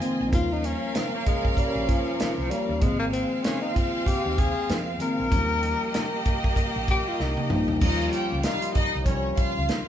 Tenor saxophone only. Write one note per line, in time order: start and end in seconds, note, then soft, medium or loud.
0.34 0.54 F4 medium
0.53 0.67 D#4 medium
0.66 0.97 C#4 medium
0.96 1.16 C4 medium
1.15 1.26 A#3 medium
1.26 1.55 G#3 medium
1.58 1.90 G3 medium
1.88 2.52 F3 loud
2.51 2.83 G3 medium
2.82 2.99 G#3 loud
2.99 3.05 A#3 medium
3.13 3.45 C4 loud
3.44 3.61 C#4 medium
3.61 3.75 D#4 medium
3.74 4.08 F4 loud
4.07 4.41 G4 loud
4.39 4.75 G#4 loud
5.02 6.53 A#4 loud
6.91 7.10 G4 loud
7.08 7.23 F4 medium
7.22 7.83 D#4 medium